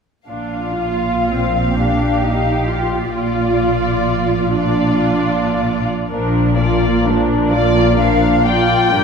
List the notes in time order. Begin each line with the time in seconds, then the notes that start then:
0.28 A#1 A#2 D4 F4 F5
0.79 F4
1.29 C4
1.75 D4 G4
2.23 D#4
2.69 F4
3.13 A#1 A#2 F4 D5
4.56 D4 F4 D5
6.10 A#1 A#2 F3 D4 A#4
6.57 A#3 F4 D5
7.05 F3 D4 A#4
7.50 A#1 A#2 A#3 F4 D5
7.96 D4 A#4
8.00 F3 D4 F5
8.45 F4 D5 G5
8.49 A#3 F4
8.91 G1 G2 G3 D4 G4 A#4